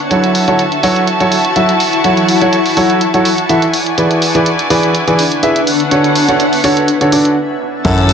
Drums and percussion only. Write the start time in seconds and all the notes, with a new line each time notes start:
0.11 closed hi-hat
0.24 closed hi-hat
0.35 open hi-hat
0.48 closed hi-hat
0.59 closed hi-hat
0.72 closed hi-hat
0.83 open hi-hat
0.96 closed hi-hat
1.07 closed hi-hat
1.20 closed hi-hat
1.32 open hi-hat
1.45 closed hi-hat
1.56 closed hi-hat
1.69 closed hi-hat
1.80 open hi-hat
1.93 closed hi-hat
2.04 closed hi-hat
2.17 closed hi-hat
2.28 open hi-hat
2.41 closed hi-hat
2.53 closed hi-hat
2.66 open hi-hat
2.77 open hi-hat
2.90 closed hi-hat
3.01 closed hi-hat
3.14 closed hi-hat
3.25 open hi-hat
3.38 closed hi-hat
3.49 closed hi-hat
3.62 closed hi-hat
3.74 open hi-hat
3.86 closed hi-hat
3.98 closed hi-hat
4.11 closed hi-hat
4.22 open hi-hat
4.35 closed hi-hat
4.46 closed hi-hat
4.59 closed hi-hat
4.70 open hi-hat
4.83 closed hi-hat
4.95 closed hi-hat
5.08 closed hi-hat
5.19 open hi-hat
5.32 closed hi-hat
5.43 closed hi-hat
5.56 closed hi-hat
5.67 open hi-hat
5.80 closed hi-hat
5.91 closed hi-hat
6.04 closed hi-hat
6.15 open hi-hat
6.29 closed hi-hat
6.40 closed hi-hat
6.53 open hi-hat
6.64 open hi-hat
6.77 closed hi-hat
6.88 closed hi-hat
7.01 closed hi-hat
7.12 open hi-hat
7.25 closed hi-hat
7.85 kick, closed hi-hat, crash
7.98 closed hi-hat
8.09 open hi-hat